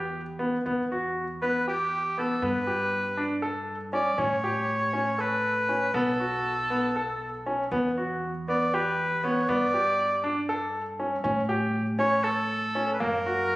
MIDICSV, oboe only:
0, 0, Header, 1, 2, 480
1, 0, Start_track
1, 0, Tempo, 514580
1, 609, Time_signature, 7, 3, 24, 8
1, 1320, Tempo, 503778
1, 12891, End_track
2, 0, Start_track
2, 0, Title_t, "Oboe"
2, 0, Program_c, 0, 68
2, 1325, Note_on_c, 0, 71, 83
2, 1546, Note_off_c, 0, 71, 0
2, 1576, Note_on_c, 0, 67, 81
2, 2062, Note_on_c, 0, 69, 70
2, 2076, Note_off_c, 0, 67, 0
2, 2290, Note_off_c, 0, 69, 0
2, 2305, Note_on_c, 0, 71, 90
2, 3211, Note_off_c, 0, 71, 0
2, 3722, Note_on_c, 0, 74, 88
2, 3970, Note_on_c, 0, 73, 98
2, 3984, Note_off_c, 0, 74, 0
2, 4928, Note_on_c, 0, 71, 87
2, 4943, Note_off_c, 0, 73, 0
2, 5637, Note_on_c, 0, 69, 87
2, 5652, Note_off_c, 0, 71, 0
2, 7087, Note_off_c, 0, 69, 0
2, 8059, Note_on_c, 0, 74, 92
2, 8303, Note_on_c, 0, 71, 84
2, 8317, Note_off_c, 0, 74, 0
2, 8779, Note_on_c, 0, 73, 81
2, 8793, Note_off_c, 0, 71, 0
2, 9017, Note_on_c, 0, 74, 103
2, 9031, Note_off_c, 0, 73, 0
2, 9970, Note_off_c, 0, 74, 0
2, 11398, Note_on_c, 0, 73, 109
2, 11630, Note_on_c, 0, 69, 96
2, 11644, Note_off_c, 0, 73, 0
2, 12289, Note_off_c, 0, 69, 0
2, 12296, Note_on_c, 0, 71, 64
2, 12361, Note_on_c, 0, 70, 91
2, 12376, Note_off_c, 0, 71, 0
2, 12891, Note_off_c, 0, 70, 0
2, 12891, End_track
0, 0, End_of_file